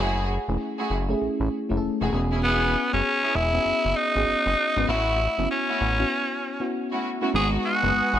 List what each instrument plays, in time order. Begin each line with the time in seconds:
Already playing: string section A3 E4, fm electric piano G#4 C#5
0.00 analog synth bass F#1, string section F#4 G#4
0.48 analog synth bass E1, fm electric piano A3 C#4 E4 G#4
0.78 string section A3 E4 F#4 G#4
0.90 analog synth bass F#1
1.09 fm electric piano A3 C#4 E4 G#4
1.22 analog synth bass A1
1.40 analog synth bass A1
1.69 analog synth bass F#1, fm electric piano A3 C#4 E4 G#4
1.77 fm electric piano A4
1.82 analog synth bass E1
2.00 analog synth bass E1, string section A3 E4 F#4 G#4
2.13 analog synth bass E1, fm electric piano B3 C#4 F#4 G#4
2.31 string section B3 C#4 E4 G#4
2.43 string section B3 C#4 E4 G#4, tenor saxophone B3
2.93 analog synth bass F#1, fm electric piano B3 C#4 F#4 G#4, tenor saxophone C#4
3.23 string section B3 C#4 E4 G#4
3.35 analog synth bass E1, tenor saxophone E4
3.54 fm electric piano B3 C#4 F#4 G#4
3.66 analog synth bass F#1
3.85 analog synth bass F#1
3.97 tenor saxophone D#4
4.15 analog synth bass G#1, fm electric piano B3 C#4 F#4 G#4
4.28 analog synth bass F#1
4.46 analog synth bass F#1
4.77 analog synth bass G#1, fm electric piano B3 C#4 F#4 B4
4.88 analog synth bass A1, string section A3 C#4 E4 F#4, tenor saxophone E4
5.38 analog synth bass F#1, fm electric piano B3 C#4 E4 F#4
5.51 tenor saxophone C#4
5.68 string section A3 C#4 E4 F#4
5.81 analog synth bass A1
5.99 fm electric piano B3 C#4 E4 F#4
6.60 fm electric piano B3 C#4 E4 F#4
6.91 string section A3 C#4 E4 F#4
7.21 string section A3 C#4 E4 F#4, fm electric piano B3 C#4 E4 F#4
7.33 analog synth bass G#1, string section G#3 B3 D#4 F#4, fm electric piano G#3 B3 D#4 F#4, tenor saxophone G#4, analog synth pad B4 F#5 G#5 D#6
7.66 tenor saxophone F#4
7.83 analog synth bass F#1, fm electric piano G#3 B3 D#4 F#4
7.95 analog synth bass G#1
8.13 analog synth bass G#1, string section G#3 B3 D#4 F#4